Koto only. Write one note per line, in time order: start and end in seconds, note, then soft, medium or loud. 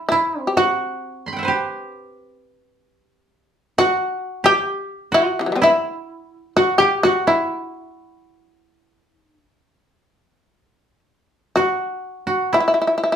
0.00 0.11 E4 medium
0.00 0.56 F#4 medium
0.12 0.40 E4 medium
0.40 2.38 C4 medium
0.57 1.54 F#4 medium
1.26 1.49 B5 soft
1.26 1.51 C6 soft
1.33 1.54 F#5 soft
1.33 2.67 G5 soft
1.39 2.88 E5 soft
1.43 3.22 B4 soft
1.43 3.14 C5 soft
1.48 3.52 G4 medium
3.78 4.50 F#4 medium
4.44 5.18 G4 medium
5.12 6.56 F#4 medium
5.62 7.27 E4 medium
6.56 6.86 F#4 medium
6.80 7.11 G4 medium
7.05 9.16 F#4 medium
7.27 9.06 E4 medium
9.06 9.30 D#4 medium
9.30 9.53 D4 medium
9.53 9.76 C#4 medium
9.76 10.99 C4 medium
11.57 12.26 F#4 medium
12.27 13.16 F#4 medium
12.53 13.16 E4 medium